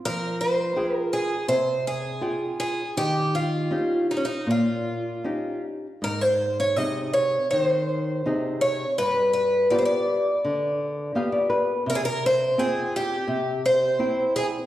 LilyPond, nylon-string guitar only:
\new Staff \with { instrumentName = "Nylon-string guitar" } { \time 4/4 \key f \minor \tempo 4 = 82 << { r1 | r1 | r1 | r2. f''16 d''16 b'8 |
r1 | } \\ { f4 <f' aes' g''>4 c4 <f' aes' g''>4 | ees4 <des' ees' g'>4 bes,4 <des' ees' g'>4 | aes,4 <c ees' aes'>4 ees4 <c ees' aes'>4 | g,4 <b f' g'>4 d4 <b f' g'>4 |
c4 <c' f' g''>4 c4 <c' e' g''>4 | } >> }